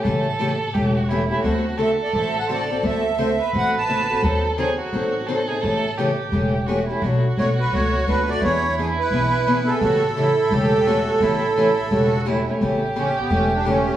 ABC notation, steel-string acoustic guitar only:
X:1
M:4/4
L:1/16
Q:"Swing" 1/4=172
K:Amix
V:1 name="Steel-string acoustic guitar"
[C,E,A,CG]2 z2 [C,E,A,CG] z3 [C,E,A,CG]2 z2 [C,E,A,CG] z [A,CG]2 | [D,A,=CFA]2 z2 [D,A,CFA] z3 [D,A,CFA]2 z2 [D,A,CFA] z [CFA]2 | [D,A,=CFA]2 z2 [D,A,CFA] z3 [D,A,CFA]2 z2 [D,A,CFA] z [CFA]2 | [^D,F,^B,^DA]2 z2 [D,F,B,DA] z3 [D,F,B,DA]2 z2 [D,F,B,DA] z [B,DA]2 |
[C,E,A,CG]2 z2 [C,E,A,CG] z3 [C,E,A,CG]2 z2 [C,E,A,CG] z [A,CG]2 | [B,,F,A,DF]2 z2 [B,,F,A,DF] z3 [B,,F,A,DF]2 z2 [B,,F,A,DF] z [A,DF]2 | [E,B,D^G]2 z2 [E,B,DG] z3 [E,B,DG]2 z2 [E,B,DG] z [B,DG]2 | [C,E,A,CG]2 z2 [C,E,A,CG] z3 [C,E,A,CG]2 z2 [C,E,A,CG] z [A,CG]2 |
[C,E,A,CG]2 z2 [C,E,A,CG] z3 [C,E,A,CG]2 z2 [C,E,A,CG] z [A,CG]2 | [C,E,A,CG]2 z2 [C,E,A,CG] z3 [C,E,A,CG]2 z2 [C,E,A,CG] z [A,CG]2 |]